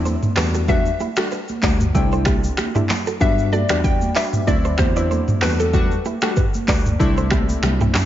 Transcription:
Already playing: tine electric piano E2, synth keys F#3 C4 D4 E4, synth pluck A5
0.05 clean electric guitar A4 C5, high conga, shaker
0.23 mid tom, high conga, shaker
0.36 tine electric piano E2, synth keys G3 A3 D4 F#4, clean electric guitar G4 B4, finger snap, cross-stick, clap, open hi-hat, high conga, low conga, shaker
0.54 clean electric guitar F#4 A4, shaker
0.68 synth keys G3 A3 D4 F#4, clean electric guitar G4 B4, synth pluck E5, kick, low conga, shaker
0.86 shaker
1.00 clean electric guitar E4 G4, high conga, shaker
1.16 synth keys G3 A3 D4 F#4, clean electric guitar F#4 A4, finger snap, cross-stick, shaker
1.31 clean electric guitar G4 B4, shaker
1.48 high conga, shaker
1.62 tine electric piano D2, synth keys G3 A3 D4 F#4, clean electric guitar B4 D5, kick, clap, open hi-hat, shaker
1.80 mid tom, high conga, shaker
1.94 tine electric piano C2, synth keys A3 C4 D4 E4, synth pluck G5, kick, low conga, shaker
2.12 clean electric guitar A4 C5, shaker
2.25 clean electric guitar E4 G4, finger snap, kick, cross-stick, high conga, shaker
2.44 shaker
2.57 finger snap, cross-stick, high conga, shaker
2.75 synth keys A3 C4 D4 E4, clean electric guitar E4 G4, mid tom, high conga, shaker
2.89 clap, open hi-hat, high conga, low conga, shaker
3.07 clean electric guitar F#4 A4, shaker
3.20 tine electric piano G2, synth keys G3 B3 D4 F#4, synth pluck E5, kick, low conga, shaker
3.38 shaker
3.53 clean electric guitar F#4 A4, synth pluck D5, high conga, shaker
3.69 tine electric piano E2, synth keys G3 B3 D4 F#4, clean electric guitar G4 B4, finger snap, cross-stick, shaker
3.84 synth pluck G5, kick, shaker
4.01 high conga, shaker
4.15 synth keys G3 B3 D4 F#4, clean electric guitar B4 D5, synth pluck E5, clap, open hi-hat, shaker
4.33 mid tom, high conga, shaker
4.47 tine electric piano D2, synth keys F#3 C4 D4 E4, synth pluck D5, kick, low conga, shaker
4.65 clean electric guitar A4 C5, shaker
4.78 tine electric piano E2, synth pluck C5, finger snap, kick, cross-stick, high conga, shaker
4.96 synth keys F#3 C4 D4 E4, clean electric guitar B4 D5, shaker
5.11 clean electric guitar A4 C5, high conga, shaker
5.28 mid tom, high conga, shaker
5.41 tine electric piano E2, synth keys G3 A3 D4 F#4, clean electric guitar G4 B4, synth pluck B4, finger snap, cross-stick, clap, open hi-hat, high conga, low conga, shaker
5.60 clean electric guitar F#4 A4, synth pluck A4, shaker
5.73 synth keys G3 A3 D4 F#4, clean electric guitar G4 B4, kick, low conga, shaker
5.91 shaker
6.05 clean electric guitar E4 G4, high conga, shaker
6.21 synth keys G3 A3 D4 F#4, clean electric guitar F#4 A4, finger snap, cross-stick, shaker
6.36 clean electric guitar G4 B4, kick, mid tom, shaker
6.54 high conga, shaker
6.68 tine electric piano D2, synth keys G3 A3 D4 F#4, clean electric guitar B4 D5, kick, clap, open hi-hat, shaker
6.86 mid tom, high conga, shaker
6.99 tine electric piano C2, synth keys A3 C4 D4 E4, kick, low conga, shaker
7.17 clean electric guitar A4 C5, shaker
7.31 clean electric guitar E4 G4, finger snap, kick, cross-stick, high conga, shaker
7.49 shaker
7.63 tine electric piano C2, finger snap, cross-stick, high conga, low conga, shaker
7.81 clean electric guitar E4 G4, mid tom, high conga, shaker
7.94 tine electric piano F#2, finger snap, cross-stick, clap, open hi-hat, high conga, low conga, shaker

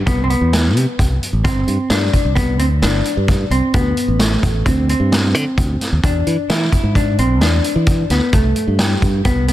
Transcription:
0.06 fingered electric bass C2, hollow-body jazz guitar B3, kick, closed hi-hat
0.24 hollow-body jazz guitar C4
0.30 hollow-body jazz guitar B3, closed hi-hat
0.41 fingered electric bass E2
0.53 snare, closed hi-hat
0.76 fingered electric bass C3, closed hi-hat
0.99 fingered electric bass C2, kick, closed hi-hat
1.23 closed hi-hat
1.33 fingered electric bass A1
1.44 hollow-body jazz guitar C4, kick, closed hi-hat
1.68 fingered electric bass G2, closed hi-hat
1.90 fingered electric bass G2, hollow-body jazz guitar D4, snare, closed hi-hat
2.13 kick, closed hi-hat
2.25 fingered electric bass C2
2.35 hollow-body jazz guitar B3, kick, closed hi-hat
2.59 fingered electric bass D2, hollow-body jazz guitar C4, closed hi-hat
2.82 fingered electric bass G1, hollow-body jazz guitar D4, snare, closed hi-hat
3.05 closed hi-hat
3.17 fingered electric bass G2
3.28 kick, snare, closed hi-hat
3.50 fingered electric bass C2, hollow-body jazz guitar C4, closed hi-hat
3.74 fingered electric bass D2, hollow-body jazz guitar B3, kick, closed hi-hat
3.97 closed hi-hat
4.08 fingered electric bass A1
4.20 hollow-body jazz guitar A3, snare, closed hi-hat
4.43 fingered electric bass A1, kick, closed hi-hat
4.66 fingered electric bass D2, hollow-body jazz guitar C4, kick, closed hi-hat
4.89 hollow-body jazz guitar C4, closed hi-hat
5.00 fingered electric bass G2
5.12 snare, closed hi-hat
5.35 fingered electric bass D3, closed hi-hat
5.57 fingered electric bass D2, kick, closed hi-hat
5.81 snare, closed hi-hat
5.92 fingered electric bass D#2
6.03 fingered electric bass E2, hollow-body jazz guitar D4, kick, closed hi-hat
6.27 fingered electric bass E3, closed hi-hat
6.50 fingered electric bass E3, hollow-body jazz guitar E4, snare, closed hi-hat
6.72 kick, closed hi-hat
6.83 fingered electric bass G#2
6.95 hollow-body jazz guitar D4, kick, closed hi-hat
7.18 fingered electric bass B1, hollow-body jazz guitar C4, closed hi-hat
7.41 fingered electric bass E2, hollow-body jazz guitar D4, snare, closed hi-hat
7.64 closed hi-hat
7.76 fingered electric bass E3
7.86 kick, closed hi-hat
8.10 fingered electric bass D2, hollow-body jazz guitar B3, snare, closed hi-hat
8.33 fingered electric bass C2, hollow-body jazz guitar A3, kick, closed hi-hat
8.56 closed hi-hat
8.68 fingered electric bass G2
8.79 hollow-body jazz guitar G3, snare, closed hi-hat
9.02 fingered electric bass G2, kick, closed hi-hat
9.25 fingered electric bass C2, hollow-body jazz guitar B3, kick, closed hi-hat
9.48 hollow-body jazz guitar B3, closed hi-hat

